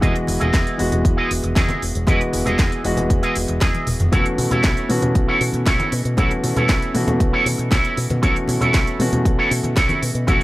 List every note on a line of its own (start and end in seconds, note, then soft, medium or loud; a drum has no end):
0.01 0.12 E2 loud
0.01 0.76 E3 medium
0.01 0.76 G#3 medium
0.01 0.76 B3 medium
0.01 0.15 E4 loud
0.01 0.77 F#4 medium
0.01 0.15 G#4 loud
0.01 0.76 D#5 medium
0.01 0.15 D#5 loud
0.01 kick loud
0.01 closed hi-hat medium
0.01 low conga medium
0.16 closed hi-hat soft
0.27 0.37 E1 loud
0.27 muted clean electric guitar stroke soft
0.27 open hi-hat medium
0.27 high conga medium
0.40 0.50 E1 medium
0.40 0.79 E4 medium
0.40 0.79 G#4 medium
0.40 0.79 D#5 medium
0.40 closed hi-hat soft
0.40 low conga medium
0.54 0.63 E2 medium
0.54 kick loud
0.54 snare loud
0.54 closed hi-hat medium
0.67 closed hi-hat soft
0.78 0.89 E1 medium
0.78 2.04 E3 medium
0.78 2.04 G#3 medium
0.78 2.04 B3 medium
0.78 2.05 F#4 medium
0.78 2.04 D#5 medium
0.78 open hi-hat medium
0.92 1.02 E1 medium
0.92 closed hi-hat medium
0.92 low conga medium
1.05 1.14 E2 medium
1.05 kick loud
1.05 closed hi-hat medium
1.17 1.30 E4 loud
1.17 1.30 G#4 loud
1.17 1.31 D#5 loud
1.31 1.40 E1 loud
1.31 open hi-hat loud
1.43 1.53 E1 medium
1.43 muted clean electric guitar stroke soft
1.43 closed hi-hat medium
1.43 high conga medium
1.55 1.66 E2 medium
1.55 1.81 E4 medium
1.55 1.82 G#4 medium
1.55 1.82 D#5 medium
1.55 kick loud
1.55 snare loud
1.55 closed hi-hat medium
1.69 closed hi-hat soft
1.69 high conga medium
1.82 1.91 E1 medium
1.82 open hi-hat medium
1.95 2.04 E1 medium
1.95 closed hi-hat medium
2.07 2.17 E2 loud
2.07 2.81 E3 medium
2.07 2.81 G#3 medium
2.07 2.81 B3 medium
2.07 2.20 E4 loud
2.07 2.82 F#4 medium
2.07 2.20 G#4 loud
2.07 2.21 B4 loud
2.07 2.82 D#5 medium
2.07 kick loud
2.07 closed hi-hat medium
2.07 low conga medium
2.21 closed hi-hat soft
2.32 2.42 E1 loud
2.32 muted clean electric guitar stroke soft
2.32 open hi-hat loud
2.32 high conga medium
2.45 2.55 E1 medium
2.45 2.84 E4 medium
2.45 2.84 G#4 medium
2.45 2.85 D#5 medium
2.45 closed hi-hat medium
2.45 low conga medium
2.59 2.68 E2 medium
2.59 kick loud
2.59 snare loud
2.59 closed hi-hat medium
2.72 closed hi-hat soft
2.84 2.94 E1 medium
2.84 4.09 E3 medium
2.84 4.09 G#3 medium
2.84 4.10 B3 medium
2.84 4.10 F#4 medium
2.84 4.10 D#5 medium
2.84 open hi-hat medium
2.97 3.07 E1 medium
2.97 closed hi-hat medium
2.97 low conga medium
3.10 3.20 E2 loud
3.10 kick loud
3.10 closed hi-hat medium
3.22 3.35 E4 loud
3.22 3.36 G#4 loud
3.22 3.36 D#5 loud
3.22 closed hi-hat soft
3.35 3.45 E1 medium
3.35 open hi-hat loud
3.35 high conga medium
3.48 3.58 E1 medium
3.48 muted clean electric guitar stroke soft
3.48 closed hi-hat medium
3.61 3.71 E2 medium
3.61 3.87 E4 medium
3.61 3.87 G#4 medium
3.61 3.87 D#5 medium
3.61 kick loud
3.61 snare loud
3.61 closed hi-hat medium
3.74 closed hi-hat soft
3.74 high tom soft
3.87 3.97 E1 medium
3.87 open hi-hat medium
3.87 mid tom medium
4.00 4.09 E1 medium
4.00 closed hi-hat medium
4.00 mid tom medium
4.00 high conga medium
4.12 4.22 B1 medium
4.12 4.86 E3 medium
4.12 4.86 A3 medium
4.12 4.86 B3 medium
4.12 4.87 C#4 medium
4.12 4.25 E4 loud
4.12 4.87 F#4 medium
4.12 4.25 A4 loud
4.12 4.26 C#5 loud
4.12 kick loud
4.12 closed hi-hat medium
4.12 low conga medium
4.26 closed hi-hat soft
4.38 4.48 B2 loud
4.38 muted clean electric guitar stroke soft
4.38 open hi-hat loud
4.38 high conga medium
4.51 4.60 B2 medium
4.51 4.89 E4 medium
4.51 4.90 A4 medium
4.51 4.90 C#5 loud
4.51 closed hi-hat medium
4.51 low conga medium
4.64 4.73 B1 medium
4.64 kick loud
4.64 snare loud
4.64 closed hi-hat medium
4.77 closed hi-hat soft
4.89 4.99 B2 medium
4.89 6.14 E3 medium
4.89 6.14 A3 medium
4.89 6.15 B3 medium
4.89 6.15 C#4 medium
4.89 6.15 F#4 medium
4.89 open hi-hat medium
5.02 5.12 B2 medium
5.02 closed hi-hat medium
5.02 low conga medium
5.15 5.25 B1 medium
5.15 kick loud
5.15 closed hi-hat medium
5.28 5.41 E4 loud
5.28 5.41 A4 loud
5.28 5.41 C#5 loud
5.41 5.50 B2 loud
5.41 open hi-hat loud
5.53 5.63 B2 medium
5.53 muted clean electric guitar stroke soft
5.53 closed hi-hat medium
5.53 high conga medium
5.66 5.76 B1 medium
5.66 5.92 E4 medium
5.66 5.92 A4 medium
5.66 5.93 C#5 medium
5.66 kick loud
5.66 snare loud
5.66 closed hi-hat medium
5.80 closed hi-hat soft
5.80 high conga medium
5.92 6.01 B2 medium
5.92 open hi-hat medium
6.05 6.14 B2 medium
6.05 closed hi-hat medium
6.17 6.27 B1 loud
6.17 6.91 E3 medium
6.17 6.92 A3 medium
6.17 6.92 B3 medium
6.17 6.92 C#4 medium
6.17 6.30 E4 loud
6.17 6.92 F#4 medium
6.17 6.31 A4 loud
6.17 6.31 C#5 loud
6.17 kick loud
6.17 closed hi-hat medium
6.17 low conga medium
6.31 closed hi-hat soft
6.43 6.53 B2 medium
6.43 muted clean electric guitar stroke soft
6.43 open hi-hat loud
6.43 high conga medium
6.56 6.66 B2 medium
6.56 6.95 E4 medium
6.56 6.95 A4 medium
6.56 6.95 C#5 medium
6.56 closed hi-hat soft
6.56 low conga medium
6.69 6.78 B1 medium
6.69 kick loud
6.69 snare loud
6.69 closed hi-hat medium
6.82 closed hi-hat soft
6.94 7.04 B2 medium
6.94 8.19 E3 medium
6.94 8.20 A3 medium
6.94 8.20 B3 medium
6.94 8.20 C#4 medium
6.94 8.21 F#4 medium
6.94 open hi-hat medium
7.07 7.17 B2 medium
7.07 closed hi-hat medium
7.07 low conga loud
7.20 7.30 B1 medium
7.20 kick loud
7.20 closed hi-hat medium
7.33 7.46 E4 loud
7.33 7.46 A4 medium
7.33 7.46 C#5 loud
7.46 7.55 B2 loud
7.46 open hi-hat loud
7.46 high conga medium
7.58 7.68 B2 medium
7.58 muted clean electric guitar stroke soft
7.58 closed hi-hat medium
7.71 7.81 B1 medium
7.71 7.97 E4 medium
7.71 7.97 A4 medium
7.71 7.98 C#5 medium
7.71 kick loud
7.71 snare loud
7.71 closed hi-hat medium
7.84 closed hi-hat soft
7.97 8.07 B2 medium
7.97 open hi-hat medium
8.10 8.19 B2 medium
8.10 closed hi-hat medium
8.10 high conga medium
8.22 8.32 B1 medium
8.22 8.96 E3 medium
8.22 8.97 A3 medium
8.22 8.97 B3 medium
8.22 8.97 C#4 medium
8.22 8.35 E4 loud
8.22 8.97 F#4 medium
8.22 8.36 A4 loud
8.22 8.36 C#5 loud
8.22 kick loud
8.22 closed hi-hat medium
8.22 low conga medium
8.36 closed hi-hat soft
8.48 8.58 B2 medium
8.48 muted clean electric guitar stroke soft
8.48 open hi-hat loud
8.48 high conga medium
8.61 8.71 B2 medium
8.61 8.99 E4 medium
8.61 9.00 A4 medium
8.61 9.00 C#5 medium
8.61 closed hi-hat soft
8.61 low conga medium
8.74 8.84 B1 medium
8.74 kick loud
8.74 snare loud
8.74 closed hi-hat medium
8.87 closed hi-hat soft
8.99 9.09 B2 medium
8.99 10.25 E3 medium
8.99 10.25 A3 medium
8.99 10.25 B3 medium
8.99 10.25 C#4 medium
8.99 10.26 F#4 medium
8.99 open hi-hat loud
9.12 9.22 B2 medium
9.12 closed hi-hat medium
9.12 low conga medium
9.25 9.35 B1 medium
9.25 kick loud
9.25 closed hi-hat medium
9.38 9.51 E4 loud
9.38 9.51 A4 medium
9.38 9.51 C#5 loud
9.51 9.60 B2 loud
9.51 open hi-hat loud
9.63 9.73 B2 medium
9.63 muted clean electric guitar stroke soft
9.63 closed hi-hat soft
9.63 high conga medium
9.76 9.86 B1 medium
9.76 10.02 E4 medium
9.76 10.02 A4 medium
9.76 10.03 C#5 medium
9.76 kick loud
9.76 snare loud
9.76 closed hi-hat medium
9.89 closed hi-hat soft
9.89 high conga medium
10.02 10.12 B2 medium
10.02 open hi-hat loud
10.15 10.24 B2 medium
10.15 closed hi-hat soft
10.27 10.37 B1 medium
10.27 10.43 E3 medium
10.27 10.43 A3 medium
10.27 10.43 B3 medium
10.27 10.43 C#4 medium
10.27 10.40 E4 loud
10.27 10.43 F#4 medium
10.27 10.41 A4 loud
10.27 10.41 C#5 loud
10.27 kick loud
10.27 closed hi-hat medium
10.27 low conga medium